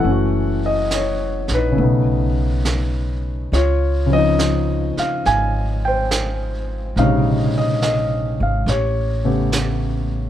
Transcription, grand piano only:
0.00 1.75 E3 soft
0.00 1.74 A3 soft
0.00 1.48 A4 medium
0.00 0.60 F#5 medium
0.07 1.79 C#4 soft
0.11 1.81 F#4 soft
0.66 0.94 D#5 medium
0.94 1.47 C#5 medium
1.54 1.81 D#4 soft
1.54 3.22 B4 medium
1.72 3.49 C#3 soft
1.76 3.51 A3 soft
1.76 3.53 B3 soft
1.83 3.55 D#4 soft
3.53 5.22 F4 soft
3.53 4.13 C#5 medium
4.06 6.93 C#3 soft
4.06 6.95 F3 soft
4.13 6.97 C4 soft
4.13 4.94 D#5 medium
4.17 6.98 D#4 medium
4.99 5.26 F5 medium
5.26 6.93 F5 medium
5.26 5.86 G#5 medium
5.85 6.94 C5 medium
5.85 7.00 G5 medium
6.98 8.68 C3 soft
6.98 8.67 C#3 soft
6.98 8.67 G#3 soft
6.98 8.67 D#4 medium
6.98 8.64 C#5 soft
6.98 7.57 F5 medium
7.58 7.81 D#5 medium
7.83 8.41 D#5 medium
8.43 8.69 F5 medium
8.69 9.24 G4 soft
8.69 10.06 C#5 medium
9.24 10.30 C#3 soft
9.24 10.30 A3 soft
9.24 10.30 B3 soft
9.24 10.30 G4 soft

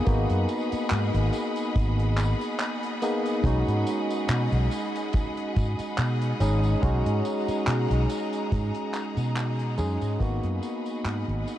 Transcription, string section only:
0.00 10.17 G#4 medium
0.00 10.17 D#5 medium
0.00 10.17 F#5 medium
0.00 6.79 B5 medium
6.83 10.17 A#5 medium
10.21 11.58 G#4 medium
10.21 11.58 D#5 medium
10.21 11.58 F#5 medium
10.21 11.58 B5 medium

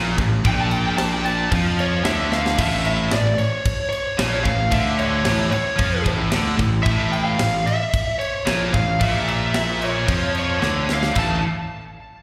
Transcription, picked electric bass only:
0.00 0.17 A#1 medium
0.19 0.44 A1 loud
0.45 1.48 A#1 medium
1.52 2.02 F2 medium
2.05 2.55 D2 medium
2.59 3.09 A1 medium
3.13 3.38 A1 medium
4.19 4.44 A#1 medium
4.46 4.71 A1 medium
4.72 5.22 D2 medium
5.26 5.51 A1 loud
5.53 muted picked electric bass stroke soft
5.79 6.04 F2 medium
6.06 6.31 A1 loud
6.34 6.58 D2 loud
6.60 6.85 A1 loud
6.86 7.36 A1 medium
7.41 7.66 A1 medium
8.48 8.73 A#1 loud
8.74 8.99 A1 loud
9.01 10.04 A#1 medium
10.08 10.58 F2 medium
10.63 11.12 D2 medium
11.16 11.41 A1 medium

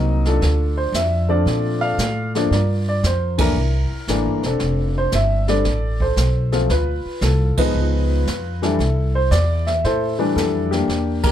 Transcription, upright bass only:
0.00 0.40 C2 medium
0.41 0.92 D2 medium
0.92 1.44 F2 medium
1.46 1.97 A#2 medium
1.98 2.49 A2 medium
2.51 3.02 G2 medium
3.03 3.54 F2 medium
3.55 3.88 C2 medium
3.91 muted upright bass stroke soft
4.08 4.27 A1 medium
4.25 4.42 G1 soft
4.43 4.59 E1 medium
4.60 5.11 F1 medium
5.13 5.64 G1 medium
5.65 6.16 A1 medium
6.16 6.68 B1 medium
6.69 7.02 D2 medium
7.05 muted upright bass stroke soft
7.21 7.55 C2 medium
7.57 muted upright bass stroke soft
7.75 8.25 C#2 medium
8.26 8.77 F2 medium
8.79 9.30 C2 medium
9.31 9.82 E2 medium
9.84 10.35 A2 medium
10.36 10.87 F2 medium
10.88 11.32 E2 medium

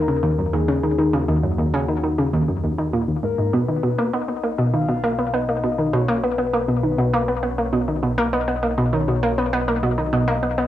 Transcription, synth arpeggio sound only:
0.08 0.18 C#3 medium
0.23 0.38 D#2 loud
0.38 0.53 F#2 medium
0.53 0.68 D#2 loud
0.68 0.79 C#3 loud
0.83 0.94 D#3 medium
0.98 1.09 D#3 medium
1.13 1.24 C#3 medium
1.28 1.43 D#2 loud
1.43 1.58 F#2 medium
1.58 1.73 D#2 loud
1.74 1.84 C#3 loud
1.88 1.99 D#3 medium
2.03 2.14 D#3 medium
2.18 2.29 C#3 medium
2.33 2.48 D#2 loud
2.48 2.63 F#2 medium
2.64 2.78 D#2 medium
2.78 2.93 D#3 medium
2.93 3.08 A#2 medium
3.08 3.18 D#2 medium
3.23 3.33 G#2 medium
3.38 3.53 G#2 medium
3.53 3.68 B2 loud
3.69 3.83 D#3 medium
3.83 3.98 B2 loud
3.99 4.09 A#3 loud
4.14 4.24 B3 medium
4.28 4.39 B3 medium
4.44 4.54 A#3 medium
4.58 4.73 B2 loud
4.74 4.88 D#3 medium
4.89 5.03 B2 loud
5.04 5.14 A#3 loud
5.19 5.29 B3 medium
5.34 5.44 B3 medium
5.49 5.59 A#3 medium
5.64 5.78 B2 loud
5.78 5.93 D#3 medium
5.93 6.08 B2 loud
6.08 6.19 A#3 loud
6.23 6.34 B3 medium
6.38 6.48 B3 medium
6.53 6.63 A#3 medium
6.68 6.83 B2 loud
6.83 6.98 D#3 medium
6.98 7.13 B2 loud
7.13 7.24 A#3 loud
7.28 7.38 B3 medium
7.43 7.53 B3 medium
7.58 7.68 A#3 medium
7.73 7.87 B2 loud
7.88 8.02 D#3 medium
8.03 8.17 B2 loud
8.18 8.28 A#3 loud
8.33 8.43 B3 medium
8.48 8.58 B3 medium
8.63 8.73 A#3 medium
8.78 8.92 B2 loud
8.93 9.08 D#3 medium
9.08 9.23 B2 loud
9.23 9.33 A#3 loud
9.38 9.48 B3 medium
9.53 9.63 B3 medium
9.68 9.78 A#3 medium
9.83 9.98 B2 loud
9.98 10.13 D#3 medium
10.13 10.27 B2 loud
10.28 10.38 A#3 loud
10.43 10.53 B3 medium
10.58 10.67 B3 medium

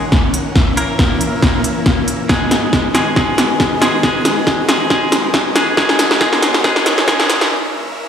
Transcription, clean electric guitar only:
0.77 2.22 A#3 medium
0.77 2.22 A#4 medium
2.29 2.87 G#3 medium
2.29 2.87 G#4 medium
2.95 3.15 G#3 medium
2.95 3.15 G#4 medium
3.16 3.74 G#3 medium
3.16 3.74 G#4 medium
3.81 4.02 G#3 medium
3.81 4.02 G#4 medium
4.03 4.61 G#3 medium
4.03 4.61 G#4 medium
4.69 4.89 G#3 medium
4.69 4.89 G#4 medium
4.90 5.48 G#3 medium
4.90 5.48 G#4 medium
5.56 5.76 G#3 medium
5.56 5.76 G#4 medium
5.77 6.19 G#3 medium
5.77 6.19 G#4 medium
6.21 6.63 G#3 medium
6.21 6.63 G#4 medium
6.64 7.06 G#3 medium
6.64 7.06 G#4 medium
7.08 7.50 G#3 medium
7.08 7.50 G#4 medium

